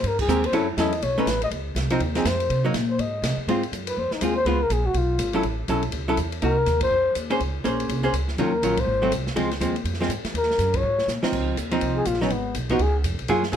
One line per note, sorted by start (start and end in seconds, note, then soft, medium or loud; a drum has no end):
0.03 0.27 G2 medium
0.03 0.20 A#4 medium
0.03 ride medium
0.19 0.47 G#4 medium
0.19 kick medium
0.19 crash medium
0.27 0.51 D#2 medium
0.27 0.42 G#3 medium
0.27 0.42 C4 medium
0.27 0.42 G4 medium
0.27 0.43 A#4 medium
0.27 hi-hat pedal medium
0.44 0.54 C5 medium
0.44 ride medium
0.52 0.77 F#2 medium
0.52 0.66 F#3 medium
0.52 0.67 C#4 medium
0.52 0.67 E4 medium
0.52 0.67 A4 medium
0.52 ride medium
0.77 1.01 E2 medium
0.77 0.91 F#3 medium
0.77 0.92 C#4 medium
0.77 0.92 E4 medium
0.77 0.92 A4 medium
0.77 1.05 D#5 medium
0.77 snare medium
0.77 hi-hat pedal soft
0.77 ride medium
0.93 ride medium
1.02 1.25 B1 medium
1.02 1.20 C#5 medium
1.02 ride medium
1.18 1.26 A3 medium
1.18 1.27 C#4 medium
1.18 1.27 D#4 medium
1.18 1.42 B4 medium
1.26 1.50 A1 medium
1.26 snare medium
1.26 hi-hat pedal medium
1.26 ride medium
1.42 1.49 D#5 loud
1.42 ride soft
1.51 1.74 C#2 medium
1.51 ride medium
1.75 1.99 C2 medium
1.75 snare medium
1.75 hi-hat pedal soft
1.75 ride medium
1.90 2.00 F3 medium
1.90 2.00 C4 medium
1.90 2.00 D#4 medium
1.90 ride medium
2.00 2.24 D#2 medium
2.00 ride medium
2.15 2.24 F3 medium
2.15 2.25 C4 medium
2.15 2.25 D#4 medium
2.15 2.28 G#4 medium
2.15 snare medium
2.15 ride soft
2.25 2.49 F2 medium
2.25 2.65 C5 medium
2.25 snare medium
2.25 hi-hat pedal medium
2.25 ride medium
2.40 ride soft
2.50 2.73 C3 medium
2.50 ride medium
2.65 2.73 F#3 medium
2.65 2.74 A#3 medium
2.65 2.74 D#4 medium
2.74 2.98 A#2 medium
2.74 snare medium
2.74 hi-hat pedal soft
2.74 ride medium
2.90 3.01 C5 medium
2.98 3.22 G#2 medium
2.98 3.38 D#5 medium
2.98 ride medium
3.22 3.36 C3 medium
3.22 snare medium
3.22 hi-hat pedal medium
3.22 ride medium
3.37 muted upright bass stroke soft
3.47 3.71 G#2 medium
3.47 3.61 G#3 medium
3.47 3.62 C4 medium
3.47 3.62 F4 medium
3.47 ride medium
3.63 ride soft
3.72 3.96 F#2 medium
3.72 hi-hat pedal medium
3.72 ride medium
3.87 4.00 B4 medium
3.87 ride medium
3.97 4.10 F2 medium
3.97 4.15 C5 medium
4.11 4.24 D#4 medium
4.11 muted upright bass stroke soft
4.11 snare soft
4.21 4.44 D#2 medium
4.21 4.35 G#3 soft
4.21 4.35 C4 soft
4.21 4.36 F4 medium
4.21 4.35 G#4 medium
4.21 hi-hat pedal medium
4.21 ride medium
4.36 4.48 C5 loud
4.45 4.69 C#2 medium
4.45 4.59 G#3 medium
4.45 4.59 B3 medium
4.45 4.60 F4 medium
4.45 4.64 B4 medium
4.45 ride soft
4.62 4.74 A#4 medium
4.70 4.93 A#1 medium
4.70 4.87 G#4 medium
4.70 hi-hat pedal medium
4.70 ride medium
4.86 4.99 F#4 medium
4.94 5.18 B1 medium
4.94 5.45 F4 medium
4.94 ride medium
5.18 5.43 G#1 medium
5.18 hi-hat pedal medium
5.18 ride medium
5.33 5.43 F#3 medium
5.33 5.43 C#4 medium
5.33 5.44 E4 medium
5.33 5.44 A4 medium
5.33 ride soft
5.43 5.67 A1 medium
5.43 ride medium
5.68 5.92 B1 medium
5.68 5.82 F#3 medium
5.68 5.82 C#4 medium
5.68 5.82 E4 soft
5.68 5.83 A4 medium
5.68 hi-hat pedal medium
5.68 ride medium
5.83 ride soft
5.92 6.17 C#2 medium
5.92 ride medium
6.08 6.17 F#3 medium
6.08 6.17 C#4 medium
6.08 6.17 E4 medium
6.08 6.18 A4 medium
6.17 6.41 E2 medium
6.17 hi-hat pedal medium
6.17 ride medium
6.32 ride soft
6.42 6.65 C2 medium
6.42 6.55 A#3 medium
6.42 6.56 D#4 medium
6.42 6.56 F#4 medium
6.42 6.79 A#4 medium
6.42 ride medium
6.66 6.90 D#2 medium
6.66 snare soft
6.66 hi-hat pedal soft
6.66 ride medium
6.81 7.14 C5 loud
6.81 kick medium
6.81 ride medium
6.91 7.15 F2 medium
7.15 7.39 D#2 medium
7.15 hi-hat pedal medium
7.15 ride medium
7.30 7.39 A#3 medium
7.30 7.39 C#4 medium
7.30 7.40 G#4 medium
7.30 7.40 C5 medium
7.30 ride soft
7.40 7.64 C#2 medium
7.40 ride medium
7.64 7.88 A#1 medium
7.64 8.01 A#3 medium
7.64 8.01 C#4 medium
7.64 8.01 G#4 medium
7.64 8.01 C5 medium
7.64 hi-hat pedal soft
7.64 ride medium
7.80 ride soft
7.89 8.12 C2 medium
7.89 ride medium
8.03 8.12 A#3 medium
8.03 8.13 C#4 medium
8.03 8.13 G#4 medium
8.03 8.13 C5 medium
8.13 8.36 C#2 medium
8.13 hi-hat pedal medium
8.13 ride medium
8.28 snare soft
8.37 8.61 D#2 medium
8.37 8.52 D#3 medium
8.37 8.52 F#3 medium
8.37 8.52 C#4 medium
8.37 8.52 F4 medium
8.37 ride soft
8.41 8.82 A#4 medium
8.62 8.85 A#1 medium
8.62 8.76 D#3 medium
8.62 8.76 F#3 medium
8.62 8.76 C#4 medium
8.62 8.76 F4 medium
8.62 hi-hat pedal soft
8.62 ride medium
8.77 9.13 C5 loud
8.77 kick medium
8.77 ride medium
8.86 9.10 G#1 medium
9.02 9.11 F#3 medium
9.02 9.11 A3 medium
9.02 9.11 C4 medium
9.11 9.35 C2 medium
9.11 hi-hat pedal medium
9.11 ride medium
9.27 snare soft
9.36 9.60 C#2 medium
9.36 9.49 F3 medium
9.36 9.50 G#3 medium
9.36 9.50 C4 medium
9.36 ride medium
9.51 snare soft
9.51 ride soft
9.60 9.84 D#2 medium
9.60 9.74 F3 medium
9.60 9.75 G#3 medium
9.60 9.75 C4 medium
9.60 hi-hat pedal medium
9.60 ride medium
9.76 ride soft
9.84 10.08 F2 medium
9.84 ride medium
9.94 snare soft
10.01 10.09 F3 medium
10.01 10.10 G#3 medium
10.01 10.10 C4 medium
10.01 snare soft
10.08 10.23 G#2 medium
10.08 hi-hat pedal medium
10.08 ride medium
10.24 muted upright bass stroke soft
10.24 snare medium
10.24 ride soft
10.34 10.58 D#2 medium
10.34 10.78 A#4 medium
10.34 ride medium
10.43 snare soft
10.51 snare soft
10.59 10.82 F#2 medium
10.59 snare soft
10.59 hi-hat pedal soft
10.59 ride medium
10.74 11.09 C#5 medium
10.74 kick medium
10.74 ride medium
10.83 11.06 G#2 medium
10.98 snare soft
11.07 11.21 A#2 medium
11.07 snare soft
11.07 hi-hat pedal medium
11.23 11.55 F3 medium
11.23 11.56 C4 medium
11.23 11.56 D#4 medium
11.23 muted upright bass stroke soft
11.23 snare medium
11.32 11.55 C#2 medium
11.32 kick medium
11.32 crash medium
11.56 11.80 D#2 medium
11.56 hi-hat pedal medium
11.56 ride medium
11.71 12.04 F3 medium
11.71 12.04 C4 medium
11.71 12.05 D#4 medium
11.71 ride soft
11.81 12.05 C2 medium
11.81 ride medium
11.97 12.08 G#4 medium
12.05 12.30 A#1 medium
12.05 12.24 F4 medium
12.05 hi-hat pedal medium
12.05 ride medium
12.14 snare soft
12.21 12.30 F#3 medium
12.21 12.30 B3 medium
12.21 12.33 C#4 medium
12.21 12.30 D#4 medium
12.21 snare soft
12.30 12.54 G#1 medium
12.30 12.56 B3 medium
12.30 ride medium
12.55 12.78 B1 medium
12.55 hi-hat pedal medium
12.55 ride medium
12.69 12.79 F3 medium
12.69 12.79 B3 medium
12.69 12.80 D#4 medium
12.69 12.83 F#4 medium
12.69 kick medium
12.69 ride soft
12.79 13.03 C#2 medium
12.79 12.96 G#4 medium
12.79 ride medium
13.03 13.13 F2 medium
13.03 hi-hat pedal medium
13.03 ride medium
13.12 13.20 C#2 medium
13.19 13.28 B1 medium
13.19 ride soft
13.28 13.52 F#2 medium
13.28 13.42 F#3 medium
13.28 13.42 A#3 medium
13.28 13.42 F4 medium
13.28 13.42 G#4 medium
13.28 ride medium
13.43 snare soft
13.52 13.56 A#2 medium
13.52 13.56 F#3 medium
13.52 13.56 A#3 medium
13.52 13.56 F4 medium
13.52 13.56 G#4 medium
13.52 hi-hat pedal medium
13.52 ride medium